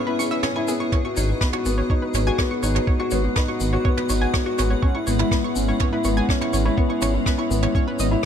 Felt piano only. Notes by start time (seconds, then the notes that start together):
Already playing: B3 C#4 E4
0.08 E4
0.20 C#4
0.32 E4
0.44 C#4
0.56 E4
0.68 B3
0.80 E4
0.92 B3
1.05 F#4
1.16 D#4
1.29 F#4
1.41 B3
1.53 F#4
1.66 B3
1.78 F#4
1.90 D#4
2.03 F#4
2.15 B3
2.27 F#4
2.39 B3
2.51 F#4
2.63 D#4
2.75 F#4
2.88 B3
3.00 F#4
3.12 B3
3.24 F#4
3.36 D#4
3.48 F#4
3.61 B3
3.73 F#4
3.86 B3
3.98 F#4
4.10 D#4
4.22 F#4
4.34 B3
4.46 F#4
4.58 B3
4.71 F#4
4.83 C#4
4.95 E4
5.07 B3
5.19 E4
5.32 B3
5.44 E4
5.56 C#4
5.68 E4
5.80 B3
5.92 E4
6.04 B3
6.17 E4
6.29 C#4
6.41 E4
6.53 B3
6.65 E4
6.77 B3
6.89 E4
7.01 C#4
7.14 E4
7.26 B3
7.38 E4
7.50 B3
7.63 E4
7.75 C#4
7.87 E4
7.99 B3
8.11 E4